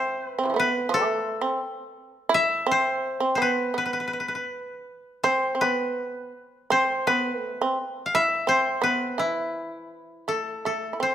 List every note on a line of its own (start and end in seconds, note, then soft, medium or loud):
0.00 0.35 C4 medium
0.00 0.26 C5 medium
0.00 1.02 E5 medium
0.26 0.59 B4 medium
0.39 0.55 C4 medium
0.44 0.54 C3 soft
0.44 0.59 E3 soft
0.50 0.56 F3 soft
0.54 0.67 A3 soft
0.54 0.89 B3 medium
0.59 2.37 B4 medium
0.89 1.39 A3 medium
0.94 2.84 A4 medium
1.41 1.59 C4 medium
2.29 2.64 E4 loud
2.34 3.84 E5 loud
2.67 3.17 C4 medium
2.71 3.35 C5 loud
3.20 3.37 C4 medium
3.35 3.72 B3 medium
3.35 3.48 C5 medium
3.42 3.77 B4 medium
3.74 4.46 B3 medium
3.74 3.85 B4 medium
3.86 3.93 B4 soft
3.93 4.00 B4 medium
4.00 4.07 B4 soft
4.08 4.13 B4 soft
4.13 4.20 B4 soft
4.20 4.28 B4 soft
4.28 4.35 B4 soft
4.35 5.29 B4 soft
5.24 5.53 C4 medium
5.24 5.67 C5 medium
5.55 5.62 C4 medium
5.61 6.31 B3 medium
5.61 6.78 B4 medium
6.70 7.04 C4 medium
6.70 7.13 C5 medium
7.07 7.39 B3 medium
7.07 8.55 B4 medium
7.39 7.56 A3 medium
7.61 7.77 C4 medium
8.06 8.21 F5 medium
8.15 8.45 E4 medium
8.15 9.64 E5 loud
8.47 8.79 C4 medium
8.47 8.90 C5 medium
8.82 9.14 B3 medium
8.82 10.61 B4 medium
9.18 10.24 E3 medium
9.18 11.15 E4 medium
10.28 10.62 A3 medium
10.28 10.66 A4 medium
10.65 10.93 A3 medium
10.65 11.15 A4 medium
10.93 11.00 E4 soft
11.00 11.15 C4 medium
11.00 11.15 C5 medium